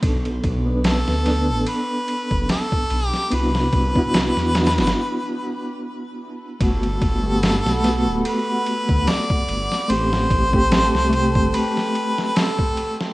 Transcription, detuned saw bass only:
X:1
M:4/4
L:1/16
Q:"Swing 16ths" 1/4=73
K:G
V:1 name="Detuned saw bass" clef=bass
B,,,2 B,,,3 D,,2 A,,, z3 F,,, z2 B,,, z | C,,2 C,,3 E,,2 G,,, z8 | G,,,2 G,,,3 B,,,2 D,,, z3 D,, z2 G,,, z | A,,,2 A,,,3 C,,2 G,,, z8 |]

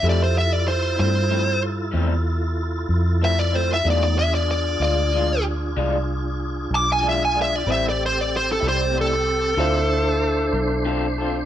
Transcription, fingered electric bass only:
X:1
M:12/8
L:1/8
Q:3/8=63
K:Ephr
V:1 name="Fingered electric bass" clef=bass
F,,3 G,,3 E,,3 F,,3 | E,,3 D,,3 C,,3 B,,,3 | A,,,3 C,,3 D,,3 B,,,3 |]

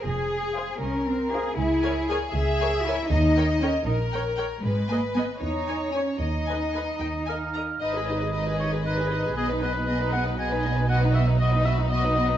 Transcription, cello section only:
X:1
M:6/8
L:1/8
Q:3/8=78
K:Fm
V:1 name="Cello section"
A3 D C A | [K:G#m] E2 G G2 E | D2 C D z2 | G, A, B, D2 C |
D4- D z | G,,6 | B,,6- | B,,6 |]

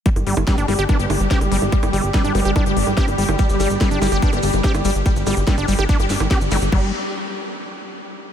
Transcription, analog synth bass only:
X:1
M:4/4
L:1/16
Q:1/4=144
K:G
V:1 name="Analog synth bass" clef=bass
z G,,, G,,, G,,, z G,,, G,,, G,,, z G,,, G,,, G,,, z G,,, G,,, G,,, | z G,,, G,,, G,,, z G,,, G,,, G,,, z G,,, G,,, G,,, z G,,, G,,, G,,, | z G,,, G,,, G,,, z G,,, G,,, G,,, z G,,, G,,, G,,, z G,,, G,,, G,,, | z G,,, G,,, G,,, z G,,, G,,, G,,, z G,,, G,,, _A,,, z G,,, G,,, G,,, |
G,,,2 z12 z2 |]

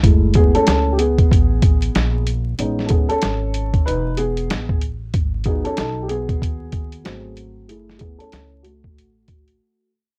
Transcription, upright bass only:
X:1
M:4/4
L:1/16
Q:"Swing 16ths" 1/4=94
K:F#dor
V:1 name="Upright bass" clef=bass
F,,,3 z C,,4 A,,,4 ^A,,,4 | A,,,3 z G,,,4 E,,,4 A,,,4 | G,,,3 z B,,,4 D,,4 G,,,4 | F,,,3 z C,,4 A,,,4 z4 |]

